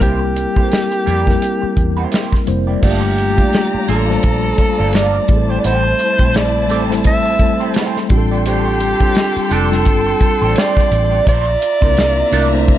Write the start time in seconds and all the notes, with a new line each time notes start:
0.00 C2 G3 A#3 C4 E4 G4 A#4 C5, kick, closed hi-hat
0.21 muted clean electric guitar stroke
0.36 muted clean electric guitar stroke, closed hi-hat
0.55 G3 A#3 C4 E4 G4 A4 C5, kick
0.64 A#4
0.72 snare, closed hi-hat
0.92 muted clean electric guitar stroke, closed hi-hat
1.06 F2 A#3 E4 G4 D5, closed hi-hat
1.26 G3 A#3 C4 E4 A#4, muted clean electric guitar stroke, kick, snare
1.42 muted clean electric guitar stroke, closed hi-hat
1.62 muted clean electric guitar stroke, muted fingered electric bass stroke
1.77 E2, kick, closed hi-hat
1.97 A#3 E4 G4 C5
2.11 A#3 E4 G4 C5, snare, closed hi-hat
2.33 kick, snare
2.46 F1 G3 A#3 C4 E4 C5, muted clean electric guitar stroke, closed hi-hat
2.67 A#3 E4 G4 D5
2.81 G1 G3 A3 A#3 D4 F4 G4 A4 D5 A#5, kick, crash
3.02 muted clean electric guitar stroke
3.17 muted clean electric guitar stroke, closed hi-hat
3.37 G3 A3 A#3 D4 F4 A4 D5, kick, closed hi-hat
3.53 snare, closed hi-hat
3.73 muted clean electric guitar stroke, muted fingered electric bass stroke
3.87 A1 G3 A#3 D4 F4 A4 E5, closed hi-hat
4.08 G3 A#3 D4 F4 C5, muted clean electric guitar stroke, snare
4.23 A#1, muted clean electric guitar stroke, kick, closed hi-hat
4.44 muted clean electric guitar stroke
4.58 kick, closed hi-hat
4.79 G1 A#3 F4 A4 D5
4.93 A#3 F4 A4 D5, snare, closed hi-hat
5.28 A1 G3 A3 C4 E4 G#4 C5 A5, muted clean electric guitar stroke, kick, closed hi-hat
5.37 A4
5.49 C4 E4 G4 C5 D5
5.60 C4 D5
5.64 A1 E4 G4 C5, closed hi-hat
5.84 muted clean electric guitar stroke
5.99 muted clean electric guitar stroke, closed hi-hat
6.19 A#1 G3 A3 C4 E4 G4 C5, kick
6.34 D5, snare, closed hi-hat
6.55 muted clean electric guitar stroke
6.68 A1 G3 A3 C4 E4 G4 A4 D5, closed hi-hat
6.89 G3 A3 C4 E4 A4, muted clean electric guitar stroke, snare
7.04 E5, muted clean electric guitar stroke, kick, closed hi-hat
7.25 muted clean electric guitar stroke
7.39 G3 A3 C4 E4 A4, kick, closed hi-hat
7.60 C4 E4 G4 C5
7.74 C4 E4 G4 C5, snare, closed hi-hat
7.97 snare
8.09 A1 G3 C4 D4 F4 G4 A4 G5 C6, muted clean electric guitar stroke, kick, closed hi-hat
8.18 A4
8.31 A3 D4 G4 D5
8.46 A3 D4 G4 C5, closed hi-hat
8.66 muted clean electric guitar stroke
8.80 muted clean electric guitar stroke, closed hi-hat
9.00 G3 A3 C4 D4 F4 G4 A4 C5, kick, closed hi-hat
9.15 snare, closed hi-hat
9.36 muted fingered electric bass stroke, muted clean electric guitar stroke, closed hi-hat
9.50 F1 G3 A3 C4 D4 F4 G4 A4 D5, closed hi-hat
9.70 G3 C4 D4 F4 A4, muted clean electric guitar stroke, snare
9.85 G1, muted clean electric guitar stroke, kick, closed hi-hat
10.07 muted clean electric guitar stroke
10.21 kick, closed hi-hat
10.42 A1 A3 D4 G4 C5
10.56 A3 D4 G4 C5 D5, snare, closed hi-hat
10.77 kick, snare
10.91 A1, muted clean electric guitar stroke, closed hi-hat
11.12 A3 D4 G4 D5
11.27 A#1 A3 D4 E4 F4 C5 D5 E5 A#5, kick, closed hi-hat
11.47 muted clean electric guitar stroke
11.62 muted clean electric guitar stroke, closed hi-hat
11.81 C2 A3 A#3 C4 D4 E4 A#4 C5, kick, closed hi-hat
11.97 snare, closed hi-hat
12.17 muted clean electric guitar stroke
12.31 C2 A3 C4 D4 E4 A#4 D5, closed hi-hat
12.51 A3 C4 D4 E4 C5, muted clean electric guitar stroke
12.68 muted clean electric guitar stroke, kick